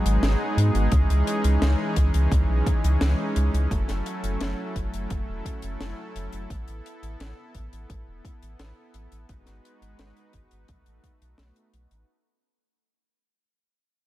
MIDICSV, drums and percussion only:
0, 0, Header, 1, 2, 480
1, 0, Start_track
1, 0, Key_signature, 4, "minor"
1, 0, Tempo, 697674
1, 633, Time_signature, 4, 2, 24, 8
1, 9673, End_track
2, 0, Start_track
2, 0, Title_t, "Drums"
2, 40, Note_on_c, 9, 42, 61
2, 109, Note_off_c, 9, 42, 0
2, 157, Note_on_c, 9, 38, 106
2, 159, Note_on_c, 9, 42, 82
2, 226, Note_off_c, 9, 38, 0
2, 228, Note_off_c, 9, 42, 0
2, 400, Note_on_c, 9, 42, 84
2, 469, Note_off_c, 9, 42, 0
2, 516, Note_on_c, 9, 42, 57
2, 584, Note_off_c, 9, 42, 0
2, 631, Note_on_c, 9, 42, 77
2, 633, Note_on_c, 9, 36, 113
2, 699, Note_off_c, 9, 42, 0
2, 702, Note_off_c, 9, 36, 0
2, 759, Note_on_c, 9, 42, 51
2, 827, Note_off_c, 9, 42, 0
2, 876, Note_on_c, 9, 42, 75
2, 945, Note_off_c, 9, 42, 0
2, 993, Note_on_c, 9, 42, 58
2, 1062, Note_off_c, 9, 42, 0
2, 1114, Note_on_c, 9, 38, 119
2, 1116, Note_on_c, 9, 42, 82
2, 1183, Note_off_c, 9, 38, 0
2, 1185, Note_off_c, 9, 42, 0
2, 1351, Note_on_c, 9, 42, 81
2, 1353, Note_on_c, 9, 36, 55
2, 1420, Note_off_c, 9, 42, 0
2, 1422, Note_off_c, 9, 36, 0
2, 1473, Note_on_c, 9, 42, 57
2, 1542, Note_off_c, 9, 42, 0
2, 1593, Note_on_c, 9, 36, 112
2, 1597, Note_on_c, 9, 42, 79
2, 1662, Note_off_c, 9, 36, 0
2, 1666, Note_off_c, 9, 42, 0
2, 1833, Note_on_c, 9, 36, 99
2, 1835, Note_on_c, 9, 42, 81
2, 1902, Note_off_c, 9, 36, 0
2, 1904, Note_off_c, 9, 42, 0
2, 1956, Note_on_c, 9, 42, 57
2, 2025, Note_off_c, 9, 42, 0
2, 2071, Note_on_c, 9, 38, 117
2, 2075, Note_on_c, 9, 42, 86
2, 2140, Note_off_c, 9, 38, 0
2, 2144, Note_off_c, 9, 42, 0
2, 2312, Note_on_c, 9, 42, 76
2, 2381, Note_off_c, 9, 42, 0
2, 2439, Note_on_c, 9, 42, 61
2, 2508, Note_off_c, 9, 42, 0
2, 2553, Note_on_c, 9, 36, 107
2, 2556, Note_on_c, 9, 42, 70
2, 2622, Note_off_c, 9, 36, 0
2, 2625, Note_off_c, 9, 42, 0
2, 2672, Note_on_c, 9, 38, 35
2, 2676, Note_on_c, 9, 42, 51
2, 2741, Note_off_c, 9, 38, 0
2, 2744, Note_off_c, 9, 42, 0
2, 2794, Note_on_c, 9, 42, 72
2, 2863, Note_off_c, 9, 42, 0
2, 2915, Note_on_c, 9, 42, 62
2, 2984, Note_off_c, 9, 42, 0
2, 3031, Note_on_c, 9, 42, 80
2, 3036, Note_on_c, 9, 38, 108
2, 3100, Note_off_c, 9, 42, 0
2, 3105, Note_off_c, 9, 38, 0
2, 3274, Note_on_c, 9, 36, 54
2, 3274, Note_on_c, 9, 42, 72
2, 3342, Note_off_c, 9, 36, 0
2, 3343, Note_off_c, 9, 42, 0
2, 3396, Note_on_c, 9, 42, 64
2, 3465, Note_off_c, 9, 42, 0
2, 3511, Note_on_c, 9, 42, 83
2, 3514, Note_on_c, 9, 36, 111
2, 3580, Note_off_c, 9, 42, 0
2, 3582, Note_off_c, 9, 36, 0
2, 3754, Note_on_c, 9, 36, 55
2, 3755, Note_on_c, 9, 42, 82
2, 3822, Note_off_c, 9, 36, 0
2, 3824, Note_off_c, 9, 42, 0
2, 3869, Note_on_c, 9, 42, 60
2, 3938, Note_off_c, 9, 42, 0
2, 3994, Note_on_c, 9, 38, 108
2, 3997, Note_on_c, 9, 42, 71
2, 4063, Note_off_c, 9, 38, 0
2, 4066, Note_off_c, 9, 42, 0
2, 4236, Note_on_c, 9, 42, 76
2, 4305, Note_off_c, 9, 42, 0
2, 4352, Note_on_c, 9, 42, 60
2, 4421, Note_off_c, 9, 42, 0
2, 4474, Note_on_c, 9, 36, 102
2, 4476, Note_on_c, 9, 42, 84
2, 4543, Note_off_c, 9, 36, 0
2, 4545, Note_off_c, 9, 42, 0
2, 4594, Note_on_c, 9, 42, 48
2, 4662, Note_off_c, 9, 42, 0
2, 4719, Note_on_c, 9, 42, 74
2, 4788, Note_off_c, 9, 42, 0
2, 4837, Note_on_c, 9, 42, 54
2, 4906, Note_off_c, 9, 42, 0
2, 4956, Note_on_c, 9, 42, 81
2, 4960, Note_on_c, 9, 38, 105
2, 5025, Note_off_c, 9, 42, 0
2, 5029, Note_off_c, 9, 38, 0
2, 5192, Note_on_c, 9, 42, 82
2, 5194, Note_on_c, 9, 36, 52
2, 5260, Note_off_c, 9, 42, 0
2, 5263, Note_off_c, 9, 36, 0
2, 5317, Note_on_c, 9, 42, 58
2, 5386, Note_off_c, 9, 42, 0
2, 5434, Note_on_c, 9, 36, 105
2, 5434, Note_on_c, 9, 42, 80
2, 5502, Note_off_c, 9, 36, 0
2, 5503, Note_off_c, 9, 42, 0
2, 5674, Note_on_c, 9, 36, 92
2, 5677, Note_on_c, 9, 42, 81
2, 5743, Note_off_c, 9, 36, 0
2, 5746, Note_off_c, 9, 42, 0
2, 5797, Note_on_c, 9, 42, 60
2, 5865, Note_off_c, 9, 42, 0
2, 5913, Note_on_c, 9, 42, 77
2, 5914, Note_on_c, 9, 38, 97
2, 5982, Note_off_c, 9, 42, 0
2, 5983, Note_off_c, 9, 38, 0
2, 6151, Note_on_c, 9, 42, 80
2, 6220, Note_off_c, 9, 42, 0
2, 6273, Note_on_c, 9, 42, 60
2, 6342, Note_off_c, 9, 42, 0
2, 6392, Note_on_c, 9, 42, 82
2, 6394, Note_on_c, 9, 36, 103
2, 6461, Note_off_c, 9, 42, 0
2, 6462, Note_off_c, 9, 36, 0
2, 6508, Note_on_c, 9, 38, 29
2, 6513, Note_on_c, 9, 42, 50
2, 6577, Note_off_c, 9, 38, 0
2, 6582, Note_off_c, 9, 42, 0
2, 6640, Note_on_c, 9, 42, 81
2, 6709, Note_off_c, 9, 42, 0
2, 6758, Note_on_c, 9, 42, 60
2, 6827, Note_off_c, 9, 42, 0
2, 6872, Note_on_c, 9, 42, 87
2, 6876, Note_on_c, 9, 38, 111
2, 6941, Note_off_c, 9, 42, 0
2, 6945, Note_off_c, 9, 38, 0
2, 6995, Note_on_c, 9, 42, 46
2, 7063, Note_off_c, 9, 42, 0
2, 7108, Note_on_c, 9, 42, 84
2, 7113, Note_on_c, 9, 36, 53
2, 7177, Note_off_c, 9, 42, 0
2, 7182, Note_off_c, 9, 36, 0
2, 7231, Note_on_c, 9, 42, 55
2, 7300, Note_off_c, 9, 42, 0
2, 7351, Note_on_c, 9, 42, 78
2, 7353, Note_on_c, 9, 36, 105
2, 7419, Note_off_c, 9, 42, 0
2, 7422, Note_off_c, 9, 36, 0
2, 7472, Note_on_c, 9, 42, 48
2, 7540, Note_off_c, 9, 42, 0
2, 7593, Note_on_c, 9, 36, 54
2, 7594, Note_on_c, 9, 42, 80
2, 7662, Note_off_c, 9, 36, 0
2, 7662, Note_off_c, 9, 42, 0
2, 7718, Note_on_c, 9, 42, 62
2, 7787, Note_off_c, 9, 42, 0
2, 7829, Note_on_c, 9, 38, 99
2, 7836, Note_on_c, 9, 42, 81
2, 7898, Note_off_c, 9, 38, 0
2, 7905, Note_off_c, 9, 42, 0
2, 7953, Note_on_c, 9, 42, 46
2, 8022, Note_off_c, 9, 42, 0
2, 8074, Note_on_c, 9, 42, 79
2, 8143, Note_off_c, 9, 42, 0
2, 8195, Note_on_c, 9, 42, 58
2, 8263, Note_off_c, 9, 42, 0
2, 9673, End_track
0, 0, End_of_file